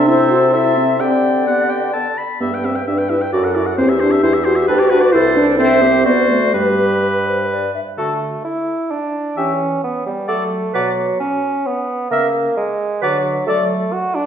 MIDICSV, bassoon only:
0, 0, Header, 1, 2, 480
1, 0, Start_track
1, 0, Key_signature, 1, "major"
1, 0, Tempo, 463679
1, 1035, Time_signature, 3, 2, 24, 8
1, 3445, Tempo, 455235
1, 6325, Tempo, 475059
1, 8264, Key_signature, 2, "major"
1, 9205, Tempo, 455581
1, 14844, End_track
2, 0, Start_track
2, 0, Title_t, "Bassoon"
2, 0, Program_c, 0, 70
2, 0, Note_on_c, 0, 48, 72
2, 1039, Note_on_c, 0, 50, 58
2, 1055, Note_off_c, 0, 48, 0
2, 2248, Note_off_c, 0, 50, 0
2, 2493, Note_on_c, 0, 43, 59
2, 2915, Note_off_c, 0, 43, 0
2, 2975, Note_on_c, 0, 43, 57
2, 3392, Note_off_c, 0, 43, 0
2, 3446, Note_on_c, 0, 42, 69
2, 3870, Note_off_c, 0, 42, 0
2, 3924, Note_on_c, 0, 40, 60
2, 4348, Note_off_c, 0, 40, 0
2, 4402, Note_on_c, 0, 40, 65
2, 4822, Note_off_c, 0, 40, 0
2, 4877, Note_on_c, 0, 38, 80
2, 5298, Note_off_c, 0, 38, 0
2, 5347, Note_on_c, 0, 36, 74
2, 6321, Note_on_c, 0, 38, 68
2, 6336, Note_off_c, 0, 36, 0
2, 6796, Note_off_c, 0, 38, 0
2, 6802, Note_on_c, 0, 43, 58
2, 7996, Note_off_c, 0, 43, 0
2, 8264, Note_on_c, 0, 57, 51
2, 8704, Note_off_c, 0, 57, 0
2, 8737, Note_on_c, 0, 64, 66
2, 9206, Note_on_c, 0, 62, 57
2, 9222, Note_off_c, 0, 64, 0
2, 9697, Note_on_c, 0, 61, 50
2, 9713, Note_off_c, 0, 62, 0
2, 10176, Note_off_c, 0, 61, 0
2, 10183, Note_on_c, 0, 59, 61
2, 10413, Note_off_c, 0, 59, 0
2, 10420, Note_on_c, 0, 55, 58
2, 10662, Note_on_c, 0, 57, 62
2, 10678, Note_off_c, 0, 55, 0
2, 11135, Note_off_c, 0, 57, 0
2, 11141, Note_on_c, 0, 54, 56
2, 11609, Note_off_c, 0, 54, 0
2, 11617, Note_on_c, 0, 61, 64
2, 12106, Note_on_c, 0, 59, 58
2, 12122, Note_off_c, 0, 61, 0
2, 12568, Note_off_c, 0, 59, 0
2, 12575, Note_on_c, 0, 58, 66
2, 13047, Note_off_c, 0, 58, 0
2, 13060, Note_on_c, 0, 56, 74
2, 13539, Note_on_c, 0, 54, 65
2, 13554, Note_off_c, 0, 56, 0
2, 14001, Note_off_c, 0, 54, 0
2, 14007, Note_on_c, 0, 57, 65
2, 14490, Note_on_c, 0, 66, 74
2, 14506, Note_off_c, 0, 57, 0
2, 14726, Note_on_c, 0, 62, 78
2, 14742, Note_off_c, 0, 66, 0
2, 14844, Note_off_c, 0, 62, 0
2, 14844, End_track
0, 0, End_of_file